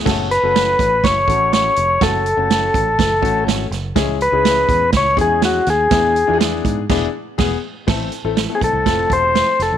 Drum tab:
CC |x-------|--------|--------|----x-x-|
HH |-xxxxxxx|xxxxxxxx|xxxxxxxx|xxxx----|
SD |o-o-o-o-|o-o-o-oo|o-o-o-oo|o-o-o-o-|
BD |o--ooo--|o--ooo--|o--ooo--|o--oo-o-|

CC |x-------|
HH |-xxxxxxx|
SD |o-o-o-oo|
BD |o--ooo--|